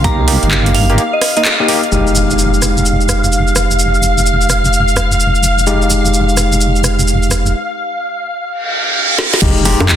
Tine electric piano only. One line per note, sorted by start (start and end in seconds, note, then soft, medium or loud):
0.04 0.26 A#3 medium
0.04 0.26 D#4 medium
0.04 0.26 G4 loud
0.28 0.86 A#3 medium
0.28 0.86 D#4 medium
0.28 0.86 G4 medium
0.90 1.01 A#3 loud
0.90 1.01 D#4 medium
0.90 1.01 G4 loud
1.37 1.43 A#3 medium
1.37 1.43 D#4 medium
1.37 1.43 A#4 medium
1.60 1.66 A#3 medium
1.60 1.66 D#4 medium
1.60 1.66 G4 medium
1.68 1.80 A#3 medium
1.68 1.80 D#4 medium
1.68 1.80 G4 medium
1.92 5.65 G#3 medium
1.92 5.65 D#4 medium
1.92 5.65 G4 medium
5.67 7.54 G#3 medium
5.67 7.54 D#4 medium
5.67 7.54 G4 medium
9.42 9.63 G#3 medium
9.42 9.63 D#4 medium
9.42 9.63 G4 loud
9.65 9.96 G#3 medium
9.65 9.96 D#4 medium
9.65 9.96 G4 medium